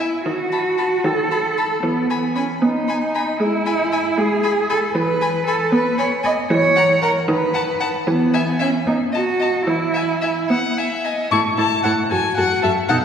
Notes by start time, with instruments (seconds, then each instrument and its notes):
Already playing: cello E4
0.26 viola D#3, cello F#4
0.52 violin A5 B5
0.78 violin A5 B5
1.05 viola D#3, cello A4
1.31 violin A5 B5
1.58 violin A5 B5
1.83 viola E3, cello B3
2.10 violin G#5 B5
2.35 cello C#4, violin G#5 B5
2.62 viola B3, cello D#4
2.88 violin G#5 B5
3.15 violin G#5 B5
3.40 viola G#3, cello E4
3.66 violin G#5 B5
3.92 violin G#5 B5
4.18 viola G#3, cello G#4
4.43 violin G#5 B5
4.70 cello A4, violin G#5 B5
4.95 viola E3, cello B4
5.21 violin G#5 B5
5.47 cello A4, violin G#5 B5
5.72 viola B3, cello B4
5.98 cello C#5, violin G#5 B5
6.23 cello D#5, violin G#5 B5
6.51 viola E3, cello C#5
6.76 violin F#5 A#5
7.02 cello A#4, violin F#5 A#5
7.29 viola D#3, cello B4
7.54 violin F#5 A5
7.80 violin F#5 A5
8.07 viola E3, cello B3
8.34 violin E5 G#5
8.60 cello C#4, violin E5 G#5
8.87 viola B3, cello D#4
9.12 cello F#4, violin D#5 A5
9.39 violin D#5 A5
9.67 viola E3, cello E4
9.94 violin E5 G#5
10.21 violin E5 G#5
10.50 viola B3, violin F#5
10.77 violin E5 G#5
11.04 violin D#5 G#5
11.31 cello A2, viola E4, violin A4 C#6
11.57 cello A2, viola E4, violin A4 A5
11.84 cello A2, viola E4, violin A4 F#5
12.11 cello F#2, viola F#4, violin A4 G#5
12.37 cello F#2, viola F#4, violin A4 F#5
12.62 cello F#2, viola F#4, violin A4 E5
12.89 cello B2, viola D#4, violin A4 F#5